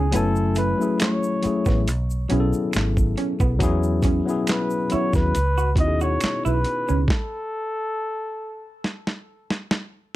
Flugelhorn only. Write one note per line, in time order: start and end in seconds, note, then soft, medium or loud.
0.00 0.12 G#4 medium
0.15 0.54 A4 medium
0.58 0.97 B4 medium
1.01 1.83 C#5 medium
4.49 4.94 B4 medium
4.92 5.15 C#5 medium
5.15 5.74 B4 medium
5.80 6.00 D#5 loud
6.03 6.42 C#5 medium
6.46 7.05 B4 medium
7.11 8.80 A4 medium